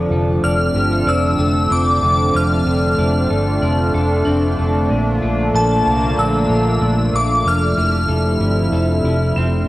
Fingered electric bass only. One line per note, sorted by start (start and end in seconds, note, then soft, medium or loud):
0.11 0.39 F1 medium
0.43 0.71 F1 medium
0.74 1.02 G1 medium
1.06 1.35 F1 loud
1.38 1.67 F1 loud
1.71 1.99 F1 loud
2.02 2.30 F1 loud
2.35 2.63 F1 medium
2.66 2.94 F1 medium
2.98 3.26 F1 loud
3.30 3.58 G1 medium
3.62 3.90 F1 loud
3.94 4.22 F1 loud
4.27 4.54 F1 medium
4.59 4.87 F1 medium
4.91 5.18 A#1 loud
5.23 5.50 A#1 medium
5.54 5.82 A#1 loud
5.86 6.14 C2 medium
6.18 6.46 A#1 loud
6.50 6.78 A#1 loud
6.82 7.10 A#1 loud
7.13 7.41 A#1 medium
7.45 7.73 F1 loud
7.77 8.05 F1 medium
8.09 8.37 F1 loud
8.40 8.69 G1 medium
8.72 9.00 F1 loud
9.04 9.32 F1 medium
9.36 9.64 F1 medium